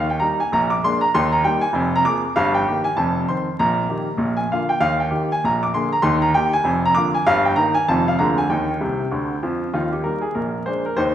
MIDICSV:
0, 0, Header, 1, 2, 480
1, 0, Start_track
1, 0, Key_signature, -3, "major"
1, 0, Tempo, 307535
1, 1767, Time_signature, 4, 2, 24, 8
1, 17400, End_track
2, 0, Start_track
2, 0, Title_t, "Grand piano"
2, 0, Program_c, 0, 0
2, 0, Note_on_c, 0, 39, 67
2, 0, Note_on_c, 0, 51, 65
2, 158, Note_on_c, 0, 79, 57
2, 251, Note_off_c, 0, 51, 0
2, 257, Note_off_c, 0, 39, 0
2, 307, Note_off_c, 0, 79, 0
2, 307, Note_on_c, 0, 82, 78
2, 324, Note_on_c, 0, 55, 37
2, 330, Note_on_c, 0, 58, 35
2, 349, Note_on_c, 0, 63, 42
2, 571, Note_off_c, 0, 82, 0
2, 589, Note_off_c, 0, 55, 0
2, 593, Note_off_c, 0, 58, 0
2, 607, Note_off_c, 0, 63, 0
2, 625, Note_on_c, 0, 80, 76
2, 779, Note_off_c, 0, 80, 0
2, 816, Note_on_c, 0, 34, 65
2, 828, Note_on_c, 0, 82, 85
2, 832, Note_on_c, 0, 46, 67
2, 1075, Note_off_c, 0, 82, 0
2, 1095, Note_on_c, 0, 86, 84
2, 1220, Note_off_c, 0, 34, 0
2, 1229, Note_off_c, 0, 46, 0
2, 1253, Note_off_c, 0, 86, 0
2, 1302, Note_on_c, 0, 56, 43
2, 1316, Note_on_c, 0, 84, 97
2, 1319, Note_on_c, 0, 58, 43
2, 1319, Note_on_c, 0, 62, 44
2, 1559, Note_off_c, 0, 84, 0
2, 1561, Note_off_c, 0, 56, 0
2, 1574, Note_off_c, 0, 58, 0
2, 1574, Note_off_c, 0, 62, 0
2, 1577, Note_on_c, 0, 82, 84
2, 1734, Note_off_c, 0, 82, 0
2, 1785, Note_on_c, 0, 84, 112
2, 1787, Note_on_c, 0, 39, 87
2, 1787, Note_on_c, 0, 51, 73
2, 2033, Note_off_c, 0, 84, 0
2, 2064, Note_on_c, 0, 82, 83
2, 2186, Note_off_c, 0, 39, 0
2, 2186, Note_off_c, 0, 51, 0
2, 2217, Note_off_c, 0, 82, 0
2, 2248, Note_on_c, 0, 55, 46
2, 2252, Note_on_c, 0, 79, 86
2, 2273, Note_on_c, 0, 58, 47
2, 2273, Note_on_c, 0, 63, 40
2, 2505, Note_off_c, 0, 79, 0
2, 2511, Note_off_c, 0, 55, 0
2, 2518, Note_on_c, 0, 80, 94
2, 2529, Note_off_c, 0, 58, 0
2, 2529, Note_off_c, 0, 63, 0
2, 2703, Note_on_c, 0, 29, 67
2, 2727, Note_on_c, 0, 41, 79
2, 2954, Note_off_c, 0, 80, 0
2, 3054, Note_on_c, 0, 82, 97
2, 3119, Note_off_c, 0, 29, 0
2, 3134, Note_off_c, 0, 41, 0
2, 3186, Note_off_c, 0, 82, 0
2, 3195, Note_on_c, 0, 53, 43
2, 3201, Note_on_c, 0, 86, 91
2, 3203, Note_on_c, 0, 58, 46
2, 3215, Note_on_c, 0, 68, 45
2, 3461, Note_off_c, 0, 53, 0
2, 3467, Note_off_c, 0, 58, 0
2, 3475, Note_off_c, 0, 68, 0
2, 3610, Note_off_c, 0, 86, 0
2, 3680, Note_on_c, 0, 77, 95
2, 3686, Note_on_c, 0, 43, 82
2, 3688, Note_on_c, 0, 31, 81
2, 3937, Note_off_c, 0, 77, 0
2, 3970, Note_on_c, 0, 79, 77
2, 4092, Note_off_c, 0, 43, 0
2, 4094, Note_off_c, 0, 31, 0
2, 4174, Note_on_c, 0, 58, 45
2, 4182, Note_on_c, 0, 51, 47
2, 4183, Note_on_c, 0, 67, 52
2, 4383, Note_off_c, 0, 79, 0
2, 4434, Note_off_c, 0, 58, 0
2, 4435, Note_on_c, 0, 80, 88
2, 4440, Note_off_c, 0, 51, 0
2, 4441, Note_off_c, 0, 67, 0
2, 4599, Note_off_c, 0, 80, 0
2, 4630, Note_on_c, 0, 81, 82
2, 4633, Note_on_c, 0, 29, 62
2, 4642, Note_on_c, 0, 41, 65
2, 5042, Note_off_c, 0, 81, 0
2, 5044, Note_off_c, 0, 29, 0
2, 5049, Note_off_c, 0, 41, 0
2, 5126, Note_on_c, 0, 51, 42
2, 5126, Note_on_c, 0, 84, 75
2, 5135, Note_on_c, 0, 60, 39
2, 5152, Note_on_c, 0, 72, 45
2, 5388, Note_off_c, 0, 51, 0
2, 5394, Note_off_c, 0, 60, 0
2, 5407, Note_off_c, 0, 72, 0
2, 5531, Note_off_c, 0, 84, 0
2, 5610, Note_on_c, 0, 82, 88
2, 5612, Note_on_c, 0, 46, 73
2, 5614, Note_on_c, 0, 34, 65
2, 6014, Note_off_c, 0, 46, 0
2, 6015, Note_off_c, 0, 34, 0
2, 6073, Note_on_c, 0, 51, 38
2, 6076, Note_on_c, 0, 58, 34
2, 6087, Note_on_c, 0, 67, 39
2, 6338, Note_off_c, 0, 51, 0
2, 6341, Note_off_c, 0, 58, 0
2, 6348, Note_off_c, 0, 67, 0
2, 6515, Note_on_c, 0, 34, 55
2, 6523, Note_on_c, 0, 46, 63
2, 6675, Note_off_c, 0, 82, 0
2, 6813, Note_on_c, 0, 80, 76
2, 6940, Note_off_c, 0, 34, 0
2, 6945, Note_off_c, 0, 46, 0
2, 6984, Note_off_c, 0, 80, 0
2, 7047, Note_on_c, 0, 50, 36
2, 7052, Note_on_c, 0, 77, 69
2, 7067, Note_on_c, 0, 58, 38
2, 7067, Note_on_c, 0, 65, 47
2, 7301, Note_off_c, 0, 77, 0
2, 7308, Note_off_c, 0, 50, 0
2, 7321, Note_on_c, 0, 79, 76
2, 7322, Note_off_c, 0, 58, 0
2, 7323, Note_off_c, 0, 65, 0
2, 7480, Note_off_c, 0, 79, 0
2, 7497, Note_on_c, 0, 39, 68
2, 7499, Note_on_c, 0, 77, 102
2, 7502, Note_on_c, 0, 51, 70
2, 7762, Note_off_c, 0, 77, 0
2, 7805, Note_on_c, 0, 79, 60
2, 7913, Note_off_c, 0, 39, 0
2, 7915, Note_off_c, 0, 51, 0
2, 7965, Note_on_c, 0, 51, 42
2, 7965, Note_on_c, 0, 58, 37
2, 7972, Note_on_c, 0, 67, 44
2, 8217, Note_off_c, 0, 79, 0
2, 8237, Note_off_c, 0, 51, 0
2, 8237, Note_off_c, 0, 58, 0
2, 8242, Note_off_c, 0, 67, 0
2, 8305, Note_on_c, 0, 80, 82
2, 8453, Note_off_c, 0, 80, 0
2, 8493, Note_on_c, 0, 46, 61
2, 8495, Note_on_c, 0, 34, 55
2, 8507, Note_on_c, 0, 82, 82
2, 8749, Note_off_c, 0, 82, 0
2, 8785, Note_on_c, 0, 86, 80
2, 8893, Note_off_c, 0, 46, 0
2, 8894, Note_off_c, 0, 34, 0
2, 8933, Note_off_c, 0, 86, 0
2, 8960, Note_on_c, 0, 50, 41
2, 8961, Note_on_c, 0, 84, 78
2, 8975, Note_on_c, 0, 58, 42
2, 8976, Note_on_c, 0, 68, 45
2, 9214, Note_off_c, 0, 84, 0
2, 9222, Note_off_c, 0, 50, 0
2, 9233, Note_off_c, 0, 58, 0
2, 9233, Note_off_c, 0, 68, 0
2, 9247, Note_on_c, 0, 82, 82
2, 9399, Note_on_c, 0, 84, 103
2, 9401, Note_on_c, 0, 51, 75
2, 9403, Note_off_c, 0, 82, 0
2, 9408, Note_on_c, 0, 39, 87
2, 9669, Note_off_c, 0, 84, 0
2, 9706, Note_on_c, 0, 82, 81
2, 9822, Note_off_c, 0, 51, 0
2, 9827, Note_off_c, 0, 39, 0
2, 9870, Note_off_c, 0, 82, 0
2, 9899, Note_on_c, 0, 79, 92
2, 9901, Note_on_c, 0, 51, 46
2, 9920, Note_on_c, 0, 58, 46
2, 9930, Note_on_c, 0, 67, 48
2, 10161, Note_off_c, 0, 79, 0
2, 10168, Note_off_c, 0, 51, 0
2, 10182, Note_off_c, 0, 58, 0
2, 10189, Note_off_c, 0, 67, 0
2, 10197, Note_on_c, 0, 80, 103
2, 10365, Note_on_c, 0, 29, 66
2, 10375, Note_on_c, 0, 41, 77
2, 10628, Note_off_c, 0, 80, 0
2, 10699, Note_on_c, 0, 82, 96
2, 10784, Note_off_c, 0, 29, 0
2, 10790, Note_off_c, 0, 41, 0
2, 10841, Note_off_c, 0, 82, 0
2, 10841, Note_on_c, 0, 86, 105
2, 10858, Note_on_c, 0, 58, 48
2, 10866, Note_on_c, 0, 50, 52
2, 10883, Note_on_c, 0, 65, 46
2, 11110, Note_off_c, 0, 86, 0
2, 11126, Note_off_c, 0, 58, 0
2, 11132, Note_off_c, 0, 50, 0
2, 11144, Note_off_c, 0, 65, 0
2, 11152, Note_on_c, 0, 80, 89
2, 11313, Note_off_c, 0, 80, 0
2, 11340, Note_on_c, 0, 77, 115
2, 11342, Note_on_c, 0, 31, 88
2, 11347, Note_on_c, 0, 43, 81
2, 11601, Note_off_c, 0, 77, 0
2, 11632, Note_on_c, 0, 79, 73
2, 11754, Note_off_c, 0, 31, 0
2, 11757, Note_off_c, 0, 43, 0
2, 11793, Note_off_c, 0, 79, 0
2, 11800, Note_on_c, 0, 82, 94
2, 11806, Note_on_c, 0, 51, 51
2, 11814, Note_on_c, 0, 58, 45
2, 11814, Note_on_c, 0, 63, 53
2, 12069, Note_off_c, 0, 82, 0
2, 12077, Note_off_c, 0, 51, 0
2, 12083, Note_off_c, 0, 58, 0
2, 12083, Note_off_c, 0, 63, 0
2, 12087, Note_on_c, 0, 80, 103
2, 12258, Note_off_c, 0, 80, 0
2, 12300, Note_on_c, 0, 51, 39
2, 12301, Note_on_c, 0, 41, 68
2, 12306, Note_on_c, 0, 81, 98
2, 12310, Note_on_c, 0, 29, 73
2, 12321, Note_on_c, 0, 60, 42
2, 12323, Note_on_c, 0, 65, 51
2, 12564, Note_off_c, 0, 81, 0
2, 12567, Note_off_c, 0, 51, 0
2, 12582, Note_off_c, 0, 60, 0
2, 12584, Note_off_c, 0, 65, 0
2, 12609, Note_on_c, 0, 77, 75
2, 12713, Note_off_c, 0, 41, 0
2, 12718, Note_off_c, 0, 29, 0
2, 12763, Note_off_c, 0, 77, 0
2, 12777, Note_on_c, 0, 56, 40
2, 12777, Note_on_c, 0, 82, 78
2, 12778, Note_on_c, 0, 50, 77
2, 12781, Note_on_c, 0, 38, 62
2, 12787, Note_on_c, 0, 58, 39
2, 12799, Note_on_c, 0, 65, 47
2, 13039, Note_off_c, 0, 82, 0
2, 13045, Note_off_c, 0, 56, 0
2, 13052, Note_off_c, 0, 58, 0
2, 13061, Note_off_c, 0, 65, 0
2, 13075, Note_on_c, 0, 80, 81
2, 13192, Note_off_c, 0, 50, 0
2, 13194, Note_off_c, 0, 38, 0
2, 13235, Note_off_c, 0, 80, 0
2, 13259, Note_on_c, 0, 39, 65
2, 13263, Note_on_c, 0, 79, 67
2, 13278, Note_on_c, 0, 51, 64
2, 13673, Note_off_c, 0, 39, 0
2, 13683, Note_off_c, 0, 51, 0
2, 13744, Note_on_c, 0, 36, 53
2, 13754, Note_on_c, 0, 48, 60
2, 14107, Note_off_c, 0, 36, 0
2, 14114, Note_off_c, 0, 48, 0
2, 14220, Note_on_c, 0, 50, 52
2, 14224, Note_on_c, 0, 38, 49
2, 14586, Note_off_c, 0, 50, 0
2, 14588, Note_off_c, 0, 38, 0
2, 14718, Note_on_c, 0, 41, 55
2, 14718, Note_on_c, 0, 53, 57
2, 14749, Note_off_c, 0, 79, 0
2, 15077, Note_off_c, 0, 41, 0
2, 15077, Note_off_c, 0, 53, 0
2, 15193, Note_on_c, 0, 39, 50
2, 15194, Note_on_c, 0, 65, 70
2, 15197, Note_on_c, 0, 51, 59
2, 15451, Note_off_c, 0, 65, 0
2, 15482, Note_on_c, 0, 67, 45
2, 15603, Note_off_c, 0, 39, 0
2, 15606, Note_off_c, 0, 51, 0
2, 15641, Note_off_c, 0, 67, 0
2, 15664, Note_on_c, 0, 70, 67
2, 15682, Note_on_c, 0, 55, 30
2, 15686, Note_on_c, 0, 58, 31
2, 15693, Note_on_c, 0, 63, 30
2, 15927, Note_off_c, 0, 70, 0
2, 15941, Note_on_c, 0, 68, 64
2, 15946, Note_off_c, 0, 55, 0
2, 15949, Note_off_c, 0, 58, 0
2, 15954, Note_off_c, 0, 63, 0
2, 16110, Note_off_c, 0, 68, 0
2, 16148, Note_on_c, 0, 70, 57
2, 16156, Note_on_c, 0, 34, 45
2, 16159, Note_on_c, 0, 46, 48
2, 16563, Note_off_c, 0, 70, 0
2, 16567, Note_off_c, 0, 34, 0
2, 16569, Note_off_c, 0, 46, 0
2, 16636, Note_on_c, 0, 72, 68
2, 16642, Note_on_c, 0, 56, 34
2, 16644, Note_on_c, 0, 58, 34
2, 16653, Note_on_c, 0, 62, 35
2, 16895, Note_off_c, 0, 72, 0
2, 16907, Note_off_c, 0, 56, 0
2, 16909, Note_off_c, 0, 58, 0
2, 16915, Note_off_c, 0, 62, 0
2, 16948, Note_on_c, 0, 70, 64
2, 17099, Note_off_c, 0, 70, 0
2, 17116, Note_on_c, 0, 72, 86
2, 17125, Note_on_c, 0, 51, 63
2, 17127, Note_on_c, 0, 39, 67
2, 17377, Note_off_c, 0, 72, 0
2, 17400, Note_off_c, 0, 39, 0
2, 17400, Note_off_c, 0, 51, 0
2, 17400, End_track
0, 0, End_of_file